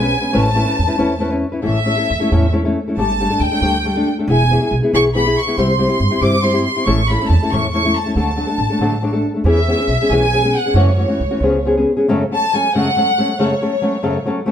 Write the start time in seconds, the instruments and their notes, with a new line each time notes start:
Already playing: upright bass B1, violin section G#5
0.02 nylon-string guitar B3 C#4 B4
0.21 nylon-string guitar B3 C#4 B4
0.33 upright bass A1, nylon-string guitar A3 C#4 E4 B4
0.38 violin section A5
0.55 nylon-string guitar A3 C#4 E4 B4
0.65 nylon-string guitar C#4 E4 B4
0.79 upright bass E2
0.88 nylon-string guitar C#4 E4 B4
0.97 upright bass E2, nylon-string guitar A3 C#4 E4 B4
1.19 nylon-string guitar A3 C#4 E4 B4
1.30 nylon-string guitar C#4 E4 B4
1.52 nylon-string guitar C#4 E4 B4
1.62 nylon-string guitar A2 E3 A3 C#4 E4 A4, violin section E5
1.66 upright bass A1
1.85 nylon-string guitar A3 C#4 E4 A4
1.97 nylon-string guitar A3 C#4 E4 A4
2.10 upright bass E2
2.20 nylon-string guitar A3 C#4 E4 A4
2.31 upright bass E2, nylon-string guitar A2 E3 A3 C#4 E4 A4
2.52 nylon-string guitar A3 C#4 E4 A4
2.65 nylon-string guitar A3 C#4 E4 A4
2.88 nylon-string guitar A3 C#4 E4 A4
2.97 upright bass G1, nylon-string guitar G3 A3 D4 A4, violin section A5
3.20 nylon-string guitar G3 A3 D4 A4
3.30 nylon-string guitar A3 D4 A4
3.40 upright bass D2, violin section G5
3.51 nylon-string guitar A3 D4 A4
3.61 upright bass D2, nylon-string guitar G3 A3 D4 A4
3.85 nylon-string guitar G3 A3 D4 A4
3.96 nylon-string guitar A3 D4 A4
4.19 nylon-string guitar A3 D4 A4
4.28 upright bass E1, nylon-string guitar E3 B3 E4 G#4, violin section G#5
4.50 nylon-string guitar E3 B3 E4 G#4
4.61 nylon-string guitar B3 E4 G#4
4.71 upright bass B1
4.83 nylon-string guitar B3 E4 G#4
4.93 upright bass B1, nylon-string guitar E3 B3 E4 G#4, violin section C#6
5.15 nylon-string guitar E3 B3 E4 G#4, violin section B5
5.26 nylon-string guitar B3 E4 G#4
5.37 violin section C#6
5.47 nylon-string guitar B3 E4 G#4
5.57 upright bass C2, nylon-string guitar C3 G3 C4 E4 G4, violin section C6
5.78 nylon-string guitar G3 C4 E4 G4
5.88 nylon-string guitar C4 E4 G4
6.00 upright bass G2
6.11 nylon-string guitar C4 E4 G4
6.21 upright bass G2, nylon-string guitar C3 G3 C4 E4 G4, violin section D6
6.42 nylon-string guitar G3 C4 E4 G4, violin section C6
6.54 nylon-string guitar C4 E4 G4
6.65 violin section C6
6.76 nylon-string guitar C4 E4 G4
6.85 upright bass A1, nylon-string guitar A2 E3 A3 C#4 E4 A4, violin section C#6
7.09 nylon-string guitar A3 C#4 E4 A4, violin section B5
7.21 nylon-string guitar A3 C#4 E4 A4
7.28 upright bass E2, violin section A5
7.43 nylon-string guitar A3 C#4 E4 A4
7.50 upright bass E2, nylon-string guitar A2 E3 A3 C#4 E4 A4, violin section C#6
7.72 nylon-string guitar A3 C#4 E4 A4, violin section C#6
7.84 nylon-string guitar A3 C#4 E4 A4
7.96 violin section A5
8.06 nylon-string guitar A3 C#4 E4 A4
8.15 upright bass D2, nylon-string guitar D3 F#3 A3 D4 A4, violin section A5
8.36 nylon-string guitar F#3 A3 D4 A4
8.47 nylon-string guitar A3 D4 A4
8.58 upright bass A1
8.70 nylon-string guitar A3 D4 A4
8.79 upright bass A1, nylon-string guitar D3 F#3 A3 D4 A4
9.02 nylon-string guitar F#3 A3 D4 A4
9.13 nylon-string guitar A3 D4 A4
9.34 nylon-string guitar A3 D4 A4
9.44 upright bass E2, nylon-string guitar E3 B3 C#4 G#4
9.49 violin section E5
9.68 nylon-string guitar E3 B3 C#4 G#4
9.79 nylon-string guitar B3 C#4 G#4
9.87 upright bass B1
10.02 nylon-string guitar B3 C#4 G#4
10.09 upright bass B1, nylon-string guitar E3 B3 C#4 G#4, violin section G#5
10.32 nylon-string guitar E3 B3 C#4 G#4
10.43 nylon-string guitar B3 C#4 G#4
10.57 violin section F#5
10.66 nylon-string guitar B3 C#4 G#4
10.74 upright bass F#2, nylon-string guitar F#2 C#3 E3 A3 C#4 F#4
10.78 violin section C#5
10.97 nylon-string guitar E3 A3 C#4 F#4
11.08 nylon-string guitar E3 A3 C#4 F#4
11.20 upright bass C#2
11.31 nylon-string guitar E3 A3 C#4 F#4
11.40 upright bass C#2, nylon-string guitar C#3 F3 B3 C#4 G#4
11.65 nylon-string guitar F3 B3 C#4 G#4
11.77 nylon-string guitar B3 C#4 G#4
11.97 nylon-string guitar B3 C#4 G#4
12.08 nylon-string guitar F#2 C#3 F#3 A3 C#4 A4
12.31 nylon-string guitar F#3 A3 C#4 A4, violin section A5
12.53 nylon-string guitar F#3 A3 C#4 A4, violin section G#5
12.75 nylon-string guitar F#2 C#3 F#3 A3 C#4 A4, violin section F#5
12.96 nylon-string guitar F#3 A3 C#4 A4
13.18 nylon-string guitar F#3 A3 C#4 A4
13.39 nylon-string guitar F#2 C#3 F#3 A3 C#4 A4, violin section C#5
13.62 nylon-string guitar F#3 A3 C#4 A4
13.82 nylon-string guitar F#3 A3 C#4 A4
14.03 nylon-string guitar F#2 C#3 F#3 A3 C#4 A4
14.25 nylon-string guitar F#3 A3 C#4 A4
14.46 nylon-string guitar F#3 A3 C#4 A4